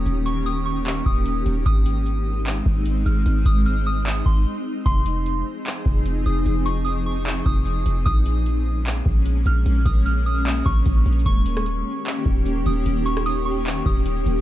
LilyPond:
<<
  \new Staff \with { instrumentName = "Synth bell" } { \time 4/4 \key ees \mixolydian \tempo 4 = 150 r8 des'''8 ees'''8 des'''4 ees'''4. | ees'''2 r4. f'''8 | r8 ees'''8 f'''8 ees'''4 c'''8 r4 | c'''2 r4. ees'''8 |
r8 des'''8 ees'''8 des'''4 ees'''4. | ees'''2 r4. f'''8 | r8 ees'''8 f'''8 ees'''4 des'''8 r4 | des'''2 r4. ees'''8 |
r8 des'''8 ees'''8 des'''4 ees'''4. | }
  \new Staff \with { instrumentName = "Ambient pad" } { \time 4/4 \key ees \mixolydian <ees bes des' g'>1 | <aes c' ees'>1~ | <aes c' ees'>1 | <f c' aes'>1~ |
<f c' aes'>1 | <aes bes des'>1~ | <aes bes des'>1 | <ees bes des' g'>1~ |
<ees bes des' g'>1 | }
  \new Staff \with { instrumentName = "808-style bass" } { \clef bass \time 4/4 \key ees \mixolydian ees,,2~ ees,,8 ees,,4 ees,,8 | aes,,2~ aes,,8 aes,,4 aes,,8 | aes,,8 aes,,2 aes,,8 r4 | f,,4. r4 f,,4 f,,8 |
f,,2~ f,,8 f,,4 f,,8 | bes,,2~ bes,,8 bes,,4 bes,,8 | bes,,8 bes,,2 bes,,8 bes,,8 bes,,8 | ees,,4. r4 ees,,4 ees,,8 |
ees,,2~ ees,,8 ees,,4 ees,,8 | }
  \new DrumStaff \with { instrumentName = "Drums" } \drummode { \time 4/4 hh8 hh8 hh4 <hc hh>8 bd8 hh8 hh8 | <hh bd>8 hh8 hh4 <hc hh>8 bd8 hh8 hh8 | hh8 <hh bd>8 hh4 <hc hh>8 bd8 r4 | <hh bd>8 hh8 hh4 <hc hh>8 bd8 hh8 hh8 |
hh8 hh8 hh4 <hc hh>8 bd8 hh8 hh8 | <hh bd>8 hh8 hh4 <hc hh>8 bd8 hh8 hh8 | hh8 <hh bd>8 hh4 <hc hh>8 bd8 \tuplet 3/2 { <hh bd>16 r16 r16 hh16 hh16 hh16 } | <hh bd>8 hh16 ss16 hh4 <hc hh>8 bd8 hh8 hh8 |
hh8 hh16 ss16 hh4 <hc hh>8 bd8 hh8 hh8 | }
>>